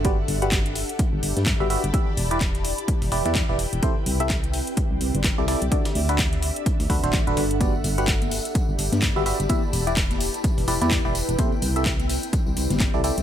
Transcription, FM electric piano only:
X:1
M:4/4
L:1/16
Q:"Swing 16ths" 1/4=127
K:G
V:1 name="FM electric piano"
[G,FGBd] z2 [G,FGBf] z8 z [G,FGBe] [FGBe] z | [E,EGBe] z2 [E,EGBd] z6 [E,EGBd] [E,EGBd] z [E,EGBd] z2 | [C,EGAc] z2 [C,EGAe] z8 z [C,EGAd] [EGAd] z | [D,DFAd] z2 [D,DFAB] z6 [D,DFAB] [D,DFAc] z [D,DFAB] z2 |
[G,FGBd] z2 [G,FGBf] z8 z [G,FGBe] [FGBe] z | [E,EGBe] z2 [E,EGBd] z6 [E,EGBd] [E,EGBd] z [E,EGBd] z2 | [C,EGAc] z2 [C,EGAe] z8 z [C,EGAd] [EGAd] z |]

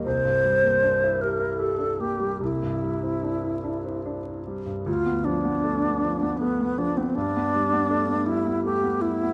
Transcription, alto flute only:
X:1
M:3/4
L:1/16
Q:1/4=78
K:Ddor
V:1 name="Alto flute"
c6 _B2 A2 G2 | E8- E2 z2 | F2 D6 B,2 D C | D6 E2 G2 E2 |]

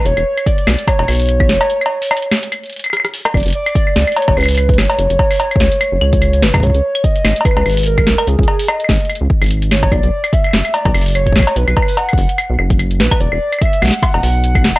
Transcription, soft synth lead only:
X:1
M:4/4
L:1/8
Q:"Swing 16ths" 1/4=146
K:Emix
V:1 name="Soft synth lead"
c2 d2 c4- | c6 z2 | d d3 c B2 c- | c6- c B |
c2 ^d2 B2 ^A2 | G2 ^d2 z3 c | d2 e2 d2 c2 | B2 f2 z3 B |
d2 e f4- f |]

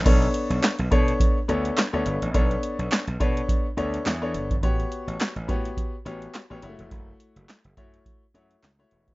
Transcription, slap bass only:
X:1
M:4/4
L:1/16
Q:"Swing 16ths" 1/4=105
K:Bm
V:1 name="Slap bass" clef=bass
B,,,2 z B,,, z B,,, B,,2 z2 D,,2 z D,, G,,, A,,, | B,,,2 z B,,, z B,,, B,,2 z2 D,,2 E,,2 G,,,2 | A,,,2 z A,,, z A,,, A,,2 z2 A,,,2 z A,,, F,,, E,,, | F,,,2 z F,,, z F,,, F,,2 z2 F,,2 C,,2 E,,,2 |]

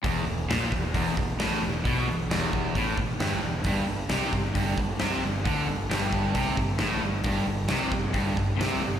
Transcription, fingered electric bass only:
X:1
M:4/4
L:1/8
Q:1/4=133
K:Em
V:1 name="Fingered electric bass" clef=bass
E,,, E,,, ^A,,, E,,, E,,, E,,, =A,,, E,,, | B,,, E,,, E,,,2 A,,, E,,, G,,, E,,, | G,,, G,,, C,, G,,, G,,, G,,, C,, G,,, | D,, G,,, G,,,2 C,, G,,, A,,, G,,, |
G,,, G,,, C,, G,,, G,,, G,,, C,, G,,, |]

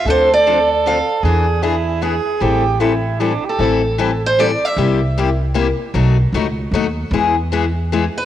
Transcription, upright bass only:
X:1
M:3/4
L:1/8
Q:"Swing" 1/4=153
K:Am
V:1 name="Upright bass" clef=bass
D,,6 | E,,6 | A,,,6 | A,,,6 |
C,,6 | B,,,2 ^C,,2 ^D,,2 | E,,6 |]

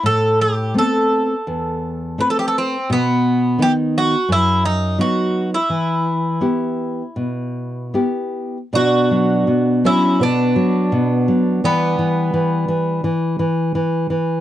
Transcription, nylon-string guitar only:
X:1
M:4/4
L:1/8
Q:1/4=84
K:Em
V:1 name="Nylon-string guitar" clef=bass
A,,2 [A,B,C]2 E,,2 [A,CB]2 | B,,2 [^D,B,^D]2 F,,2 [F,B,D]2 | E,2 [B,EG]2 B,,2 [B,EG]2 | [K:Bm] B,, F, B,, F, B,, F, B,, F, |
E, E, E, E, E, E, E, E, |]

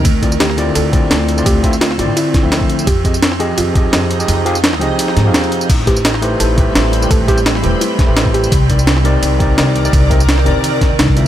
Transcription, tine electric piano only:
X:1
M:4/4
L:1/16
Q:1/4=170
K:Am
V:1 name="Tine electric piano"
z2 [D,CEFd] z3 [D,CEFd]4 [D,CEFd]4- [D,CEFd] [D,CEFd]- | [D,CEFd]2 [D,CEFe] z3 [D,CEFd]4- [D,CEFd] [D,F,CEe]4- [D,F,CEe] | z2 [F,CG_A_e] z3 [F,CGAe]4 [F,CGAe]4- [F,CGAe] [F,CGAe]- | [F,CG_A_e]2 [F,CGAf] z3 [F,CGAe]4- [F,CGAe] [F,CGAf]4- [F,CGAf] |
z2 [A,EGBc] z3 [A,EGBc]4 [A,EGBc]4- [A,EGBc] [A,EGBc]- | [A,EGBc]2 [A,EGBc] z3 [A,EGBc]4- [A,EGBc] [A,EGBc]4- [A,EGBc] | z2 [C,C_E_Bd] z3 [C,CEBd]4 [C,CEBd]4- [C,CEBd] [C,CEBd]- | [C,C_E_Bd]2 [C,CEB_e] z3 [C,CEBd]4- [C,CEBd] z3 [D,C=EF=e]2 |]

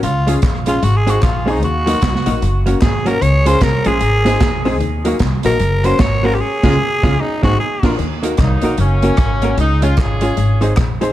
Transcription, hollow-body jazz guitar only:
X:1
M:4/4
L:1/8
Q:"Swing" 1/4=151
K:Ebdor
V:1 name="Hollow-body jazz guitar"
z [A,DFA] z [A,DFA] z [A,CEA] z [A,CEA] | z [G,B,EG] z [G,B,EG] z [G,B,DG] z [G,B,DG] | z [A,DFA] z [A,DFA] z [A,CEA] z [A,CEA] | z [G,B,EG] z [G,B,EG] z [G,B,DG] z [G,B,DG] |
z [A,DFA] z [A,DFA] z [A,CEA] z [B,=DFB] | z [B,EGB] z [B,EGB] z [B,DGB] z [B,DGB] | z [A,DFA] z [A,DFA] z [A,CEA] z [A,CEA] |]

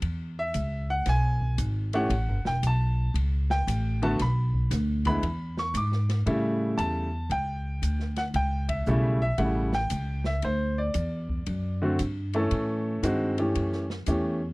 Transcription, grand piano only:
X:1
M:4/4
L:1/16
Q:"Swing" 1/4=115
K:Amix
V:1 name="Grand piano"
z2 e4 f2 ^g4 z2 f2- | f2 g2 a4 z2 g4 a2 | b4 z2 b4 c'2 d'3 z | z4 a4 g6 f2 |
g2 e4 e2 f2 g4 e2 | =c2 d8 z6 | z16 |]
V:2 name="Grand piano"
z12 z2 [E,A,CG]2 | z12 z2 [D,A,B,F]2 | z6 [D,^G,B,E]2 z8 | [C,G,A,E]6 z8 z2 |
z4 [C,G,A,E]2 z2 [C,G,A,E]2 z6 | z8 z2 [D,A,=CF]2 z2 [E,A,^CA]2- | [E,A,CA]4 [^D,^G,=CF]2 [E,A,^C=G]4 z2 [E,A,CG]2 z2 |]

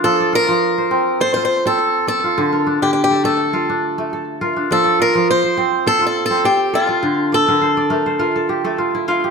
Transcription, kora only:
X:1
M:4/4
L:1/16
Q:"Swing 16ths" 1/4=103
K:F
V:1 name="Kora"
[DB] d F3 c3 c F3 z2 d F- | F B D3 A3 A D3 A2 B D- | D d F3 c3 c F3 c2 d F- | F z d B c d B c B A G A F E F G |]
V:2 name="Kora"
F,2 z F,2 z C2 A2 z C2 z A2 | D,2 z D,2 z A,2 F2 z A,2 z F2 | F,2 z F,2 z C2 A2 z C2 z A2 | D,2 z D,2 z A,2 F2 z A,2 z F2 |]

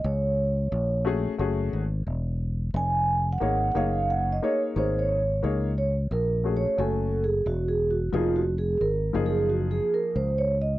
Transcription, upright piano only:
X:1
M:4/4
L:1/8
Q:"Swing 16ths" 1/4=89
K:Gblyd
V:1 name="Upright piano"
z3 [=A,DG_A] [=A,DG_A] z3 | z2 [B,EAd] [B,EAd]2 [B,EAd] [B,EAd] z | [B,EAd] z2 [=A,DG_A] [=A,DG_a] z3 | [F,B,EA] z2 [F,B,EA]3 z2 |]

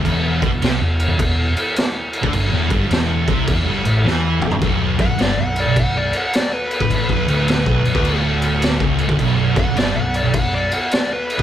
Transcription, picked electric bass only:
X:1
M:4/4
L:1/16
Q:"Swing" 1/4=105
K:Bm
V:1 name="Picked electric bass" clef=bass
E,,,2 B,,, E,,, =C,, E,,,2 E,,, E,,,2 z4 z D,, | G,,, E,,, G,,,2 E,,,2 =C,,2 E,,, G,,, A,,,2 E,,2 E,,, G,,, | B,,,,2 F,,, B,,,, G,,, B,,,,2 B,,,, B,,,,2 z4 z A,,,- | A,,, B,,,, D,,,3 B,,,, B,,,, D,,,6 C,,,2 D,,, |
B,,,,2 F,,, B,,,, G,,, B,,,,2 B,,,, B,,,,2 z4 z A,,, |]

